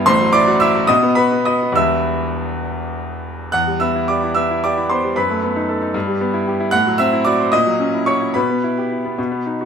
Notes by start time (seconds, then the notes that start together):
0.06 A1 A2 C5 C6
0.21 F#3
0.33 E4 D5 D6
0.47 F#4
0.60 E4 E5 E6
0.75 F#4
0.87 B2 D#5 D#6
1.03 B3
1.15 F#4 B4 B5
1.32 B3
1.45 F#4 D#5 D#6
1.63 B3
1.72 E1 E2 G3 B3 E4 E6
1.77 E5
3.52 E2 F#5 F#6
3.67 G3
3.80 B3 E5 E6
3.95 E4
4.08 G4 D5 D6
4.23 E4
4.35 B3 E5 E6
4.51 E4
4.64 G4 D5 D6
4.77 E4
4.90 B3 C5 C6
5.04 G3
5.16 F#2 B4 B5
5.30 A3
5.43 B3
5.56 D#4
5.69 A4
5.82 D#4
5.94 G2
6.07 G3
6.21 B3
6.34 E4
6.47 G4
6.60 E4
6.71 A2 F#5 F#6
6.87 F#3
6.98 C4 E5 E6
7.13 E4
7.25 F#4 D5 D6
7.40 C5
7.52 A#2 D#5 D#6
7.67 F#3
7.80 C#4
7.93 E4
8.06 F#4 C#5 C#6
8.21 E4
8.34 B2 B4 B5
8.49 B3
8.64 E4
8.78 G4
8.92 E4
9.05 B3
9.18 B2
9.32 B3
9.46 D#4
9.61 F#4